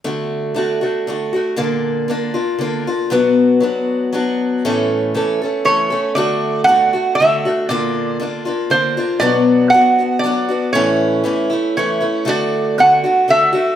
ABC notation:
X:1
M:3/4
L:1/8
Q:1/4=118
K:D
V:1 name="Resonator guitar played with a steel bar"
z6 | z6 | z6 | z4 c2 |
d2 f2 e2 | d2 z2 =c2 | d2 f2 d2 | c2 z2 c2 |
d2 f2 e2 |]
V:2 name="Steel-string acoustic guitar"
[D,A,DF]2 [D,A,DF] [A,DF] [D,A,DF] [A,DF] | [_B,,D,_B,D=F]2 [D,B,DF] [B,DF] [D,B,DF] [B,DF] | [B,,F,B,DF]2 [F,B,DF]2 [F,B,DF]2 | [A,,E,A,CA]2 [E,A,CA] [A,CA] [E,A,CA] [A,CA] |
[D,A,DF]2 [D,A,DF] [A,DF] [D,A,DF] [A,DF] | [_B,,D,_B,D=F]2 [D,B,DF] [B,DF] [D,B,DF] [B,DF] | [B,,F,B,DF]2 [F,B,DF] [B,DF] [F,B,DF] [B,DF] | [A,,E,A,CE]2 [E,A,CE] [A,CE] [E,A,CE] [A,CE] |
[D,A,DF]2 [D,A,DF] [A,DF] [D,A,DF] [A,DF] |]